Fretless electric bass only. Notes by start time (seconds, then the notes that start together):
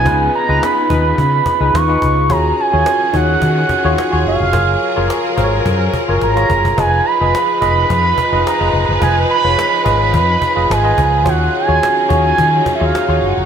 0.06 C#2
0.49 C#2
0.90 D#2
1.18 C#3
1.60 C#2
1.74 D#2
2.02 C#2
2.30 D#2
2.73 D#2
3.14 D#2
3.42 D#3
3.85 D#2
4.13 D#2
4.26 F#1
4.40 F1
4.53 F#1
4.97 F#1
5.37 G#1
5.66 F#2
6.09 F#1
6.22 G#1
6.49 F#1
6.78 F1
7.21 F1
7.62 F1
7.90 F2
8.32 F1
8.61 F1
8.73 F1
8.89 F#1
9.02 F1
9.44 F1
9.86 G#1
10.14 F2
10.57 F1
10.70 G#1
10.98 C#2
11.26 D#2
11.69 D#2
12.11 D#2
12.38 D#3
12.81 D#2
13.09 D#2
13.22 F#1
13.37 F1